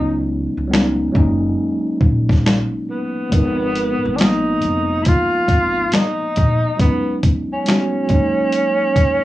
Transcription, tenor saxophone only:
Already playing: D#4
2.90 B3
4.15 D4
4.21 D#4
5.03 E4
5.07 F4
5.94 D#4
6.81 B3
7.52 C#4

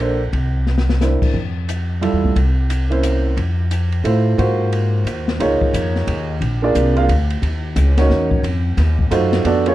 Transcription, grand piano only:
0.00 A#3 D4 A4 C5
1.00 A#3 D4 E4 C5
2.01 G3 E4 F4 A4
2.90 A#3 C#4 E4 C5
4.04 A3 E4 F4 C5
4.37 A#3 F4 F#4 C5
5.39 A#3 D#4 F4 G#4 C#5
6.62 A#3 D4 F4 G#4 D5
6.96 A#3 D4 F4 G#4 F5
7.97 A#3 C#4 D#4 F#4 C#5
9.11 A3 D#4 F4 F#4 C5
9.44 B3 D4 F#4 A4 D5
9.66 A#3 C#4 F4 G#4 C#5

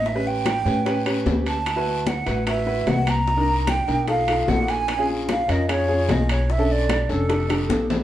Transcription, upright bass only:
Already playing: A1
0.65 A2
1.26 D2
2.26 A1
2.87 C2
3.88 B1
4.48 A#1
5.49 F2
6.09 B1
7.09 F1
7.70 A#1

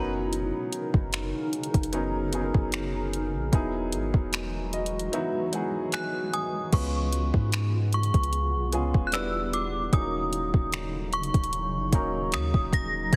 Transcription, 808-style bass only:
Already playing: F#1
0.94 F#1
1.74 F#1
2.55 F#1
3.34 A#1
3.53 E1
3.93 G#1
4.14 E1
6.73 C#2
7.34 G#2
8.14 C#2
8.54 B1
8.73 C#2
8.94 E1
9.93 D#1
10.54 D#1
11.34 D#1
11.74 F#1
11.93 D#1
12.33 D#2
12.54 D#1
13.13 E1

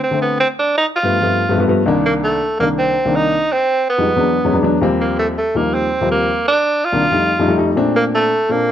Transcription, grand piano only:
0.11 D3 A3 C4
1.03 G2 F3 A3 B3
1.21 G2 F3 A3 B3
1.49 G2 F3 A3 B3
1.58 G2 F3 A3 B3
1.67 G2 F3 A3 B3
1.86 C2 D#3 A#3 D4
2.60 C2 D#3 A#3 D4
3.05 C2 D#3 A#3 D4
3.98 F2 G3 G#3 D#4
4.16 E2 F#3 G#3 B3 D4
4.44 E2 F#3 G#3 B3 C#4
4.53 E2 F#3 G#3 B3 D4
4.63 E2 F#3 G#3 B3 D4
4.81 D#2 F3 G3 A#3 C4
5.55 D#2 F3 G3 A#3 D#4
6.01 D#2 F3 G3 A#3 C4
6.93 C2 D#3 A#3 D4
7.11 F2 G3 A3 D#4
7.39 F2 G3 A3 D#4
7.48 F2 G3 A3 D#4
7.57 F2 G3 A3 D#4
7.75 A#2 A3 C4 D4
8.49 A#2 C4 D4 A4

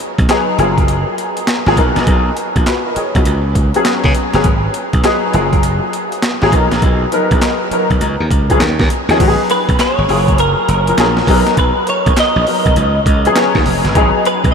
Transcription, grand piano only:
0.29 F#3 B3 D#4 G#4
0.59 F#3 A#3 F4 G#4
1.67 F#3 A#3 F4 G#4
1.77 F#3 B3 D#4 A#4
2.57 F4 A#4
2.67 F#4 B4
2.86 A#4 D#5
2.97 G#4 C#5
3.16 F#4 B4
3.75 F#3 B3 C#4 G#4
4.34 F#3 B3 C#4 G#4
5.04 F#3 B3 D#4 G#4
5.33 F#3 A#3 F4 G#4
6.42 F#3 A#3 F4 G#4
6.53 F#3 B3 D#4 A#4
7.12 F#3 B3 D#4 A#4
7.72 F#3 B3 D#4 A#4
8.50 F#3 B3 C#4 G#4
9.09 F3 C#4 D#4 G#4
9.20 F#3 B3 D#4 F#4
9.28 G#4
10.09 F#3 A#3 F4 G#4
10.88 F#3 A#3 F4 A#4
10.98 F#3 A#3 F4 G#4
11.28 F#3 B3 D#4 G#4
11.36 A#4
12.47 F#3 B3 D#4 A#4
13.26 F#3 B3 C#4 G#4
13.36 F#3 B3 C#4 G#4
13.95 F#3 B3 D#4 G#4

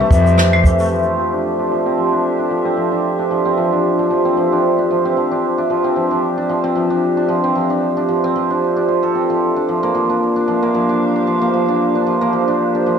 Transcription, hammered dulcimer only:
Already playing: E3 C4 D4
0.00 A3
0.12 E3
0.27 C4
0.54 C4
0.66 E3
0.80 A3
0.91 F3
1.06 C4
1.18 F3
1.33 D4
1.59 D4
1.71 F3
1.86 C4
1.98 F3
2.12 D4
2.39 D4
2.50 F3
2.65 C4
2.77 F3
2.92 D4
3.19 D4
3.31 F3
3.45 C4
3.57 F3
3.72 D4
3.99 D4
4.10 F3
4.25 C4
4.37 F3
4.52 D4
4.78 D4
4.91 F3
5.05 C4
5.17 F3
5.31 D4
5.58 D4
5.70 F3
5.84 C4
5.96 F3
6.11 D4
6.38 D4
6.49 F3
6.64 C4
6.75 F3
6.90 D4
7.17 D4
7.28 F3
7.44 C4
7.55 F3
7.70 D4
7.97 D4
8.09 F3
8.24 C4
8.36 F3
8.50 D4
8.76 D4
8.88 F4
9.03 A4
9.15 C4
9.30 F3
9.56 D4
9.69 F3
9.83 A#3
9.95 F3
10.10 D4
10.36 D4
10.48 F3
10.63 A#3
10.74 F3
10.89 D4
11.16 D4
11.27 F3
11.41 A#3
11.54 F3
11.68 D4
11.95 D4
12.06 F3
12.21 A#3
12.33 F3
12.48 D4
12.75 D4
12.86 F3

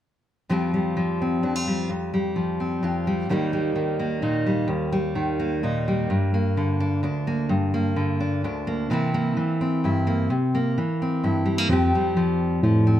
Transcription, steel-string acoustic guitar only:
0.49 F2 F3 G3 C4 F4
0.74 G3
0.97 F3
1.22 C4
1.43 F2 D4
1.56 F4
1.67 G3
1.90 F2
2.14 G3
2.36 F3
2.60 C4
2.83 F2 F4
3.07 G3
3.29 D#2 D#3 G3 A#3 D#4
3.53 G3
3.76 D#3
3.99 A#3
4.22 A#2 D#4
4.46 G3
4.68 D#2
4.92 G3
5.15 D#3
5.40 A#3
5.63 A#2 D#4
5.88 G3
6.10 G2
6.34 A#3
6.57 D3
6.80 D4
7.03 D2 D4
7.27 A#3
7.49 G2
7.74 A#3
7.96 D3
8.20 D4
8.44 D2 D4
8.67 A#3
8.90 C3 E3 A#3 C4 E4
9.14 A#3
9.37 E3
9.61 C4
9.84 G2 E4
10.07 A#3
10.30 C3
10.55 A#3
10.78 E3
11.02 C4
11.24 G2 E4
11.46 G3
11.58 A#3
11.69 F2 F3 G3 C4 G4
11.95 G3
12.17 F3
12.63 F3
12.87 C4

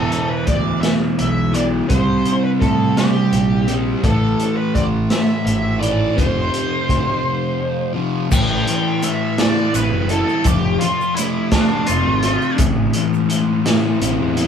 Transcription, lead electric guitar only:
Already playing: A4
0.30 B4
0.47 D5
0.81 E5
1.19 E5
1.55 D5
1.89 C5
2.44 B4
2.60 A4
2.97 G4
4.04 A4
4.57 B4
4.74 D5
5.11 E5
5.46 E5
5.80 D5
6.17 C5
8.32 G5
9.04 E5
9.40 D5
9.75 B4
10.11 A4
10.47 G4
10.80 F4
11.15 E4
11.52 D4
11.87 F4

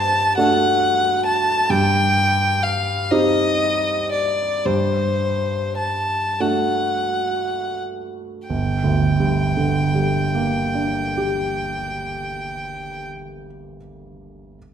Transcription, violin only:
Already playing: A5
0.38 F#5
1.26 A5
1.70 G5
2.64 F5
3.11 D#5
4.12 D5
4.65 C5
5.78 A5
6.41 F#5
8.48 G5

